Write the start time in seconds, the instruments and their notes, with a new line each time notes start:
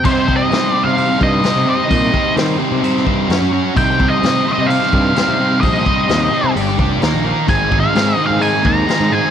0.04 overdriven electric guitar C3 G3 C4 D#4 G4 C5, picked electric bass C3, lead electric guitar C5, kick, crash
0.27 overdriven electric guitar C3 G3 C4 D#4 G4 C5, kick
0.37 lead electric guitar D#5
0.50 overdriven electric guitar C3 G3 C4 D#4 G4 C5, picked electric bass C3, snare, open hi-hat
0.73 overdriven electric guitar C3 G3 C4 D#4 G4 C5, lead electric guitar D5
0.83 picked electric bass C3, lead electric guitar F5
0.96 overdriven electric guitar C3 G3 C4 D#4 G4 C5, open hi-hat
1.19 picked electric bass G2, overdriven electric guitar C3 G3 C4 D#4 G4 C5, lead electric guitar D#5, kick
1.42 overdriven electric guitar C3 G3 C4 D#4 G4 C5, snare, open hi-hat
1.56 picked electric bass C3
1.66 overdriven electric guitar C3 G3 C4 D#4 G4 C5, lead electric guitar D#5
1.89 picked electric bass A#2, overdriven electric guitar C3 G3 C4 D#4 G4 C5, kick, open hi-hat
2.12 overdriven electric guitar C3 G3 C4 D#4 G4 C5, kick
2.36 overdriven electric guitar C3 G3 C4 D#4 G4 C5, picked electric bass D#3, snare, open hi-hat
2.58 overdriven electric guitar C3 G3 C4 D#4 G4 C5
2.72 picked electric bass C3
2.82 overdriven electric guitar C3 G3 C4 D#4 G4 C5, open hi-hat
2.97 snare
3.05 picked electric bass G2, overdriven electric guitar C3 G3 C4 D#4 G4 C5, kick
3.29 picked electric bass F#2, overdriven electric guitar F#3 C#4 F#4 C#5, snare, open hi-hat
3.41 picked electric bass F#2
3.52 overdriven electric guitar F#3 C#4 F#4 C#5
3.75 picked electric bass C2, overdriven electric guitar C3 G3 C4 D#4 G4 C5, lead electric guitar G5, kick, open hi-hat
3.99 overdriven electric guitar C3 G3 C4 D#4 G4 C5, kick
4.08 lead electric guitar D#5
4.22 overdriven electric guitar C3 G3 C4 D#4 G4 C5, picked electric bass C3, snare, open hi-hat
4.45 overdriven electric guitar C3 G3 C4 D#4 G4 C5
4.53 lead electric guitar D#5
4.58 picked electric bass C3
4.67 overdriven electric guitar C3 G3 C4 D#4 G4, lead electric guitar F5, open hi-hat
4.71 overdriven electric guitar C5
4.83 snare
4.92 picked electric bass G2, overdriven electric guitar C3 G3 C4 D#4 G4 C5, kick
5.16 overdriven electric guitar C3 G3 C4 D#4 G4 C5, snare, open hi-hat
5.28 picked electric bass C3
5.39 overdriven electric guitar C3 G3 C4 D#4 G4 C5
5.61 picked electric bass A#1, overdriven electric guitar C3 G3 C4 D#4 G4 C5, lead electric guitar D#5, kick, open hi-hat
5.85 overdriven electric guitar C3 G3 C4 D#4 G4 C5, kick
6.08 picked electric bass D#2, overdriven electric guitar C3 G3 C4 D#4 G4 C5, snare, open hi-hat
6.32 overdriven electric guitar C3 G3 C4 D#4 G4 C5
6.44 picked electric bass C3
6.56 picked electric bass G1, overdriven electric guitar G3 D4 G4 D5, open hi-hat
6.78 picked electric bass F1, overdriven electric guitar G3 D4 G4 D5, kick
7.02 picked electric bass D#2, overdriven electric guitar D#3 A#3 D#4 A#4, snare, open hi-hat
7.14 picked electric bass A#1
7.24 overdriven electric guitar D#3 A#3 D#4 A#4
7.46 picked electric bass G#1, overdriven electric guitar G#2 D#3 G#3 C4 D#4 G#4, lead electric guitar G#5, kick, open hi-hat
7.70 overdriven electric guitar G#2 D#3 G#3 C4 D#4 G#4, kick
7.80 lead electric guitar F5
7.93 overdriven electric guitar G#2 D#3 G#3 C4 D#4 G#4, picked electric bass G#2, snare, open hi-hat
8.16 overdriven electric guitar G#2 D#3 G#3 C4 D#4 G#4
8.26 picked electric bass G#2, lead electric guitar F5
8.39 overdriven electric guitar G#2 D#3 G#3 C4 D#4 G#4, lead electric guitar G#5, open hi-hat
8.63 picked electric bass D#2, overdriven electric guitar G#2 D#3 G#3 C4 D#4 G#4, lead electric guitar A#5, kick
8.86 overdriven electric guitar G#2 D#3 G#3 C4 D#4 G#4, snare, open hi-hat
9.00 picked electric bass G#2
9.10 overdriven electric guitar G#2 D#3 G#3 C4 D#4 G#4, lead electric guitar G#5